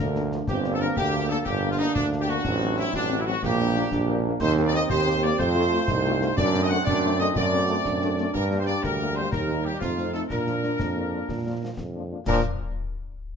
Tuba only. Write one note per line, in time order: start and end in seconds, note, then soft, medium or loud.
0.00 0.40 D2 loud
0.48 0.89 G1 loud
0.97 1.38 D2 loud
1.47 1.88 G1 loud
1.96 2.37 D2 loud
2.46 2.86 A1 loud
2.95 3.35 A1 loud
3.43 3.84 A#1 loud
3.92 4.33 A#1 loud
4.41 4.82 D#2 loud
4.90 5.31 D#2 loud
5.39 5.76 F2 loud
5.89 6.30 C2 loud
6.38 6.79 F#2 loud
6.87 7.28 F#2 loud
7.36 7.77 F#2 loud
7.85 8.26 F#2 loud
8.34 8.75 G2 loud
8.83 9.24 D2 loud
9.32 9.73 D#2 loud
9.82 10.23 F2 medium
10.31 10.71 A#2 medium
10.80 11.21 F2 medium
11.29 11.70 A#2 medium
11.78 12.15 F2 medium
12.27 12.41 A#2 loud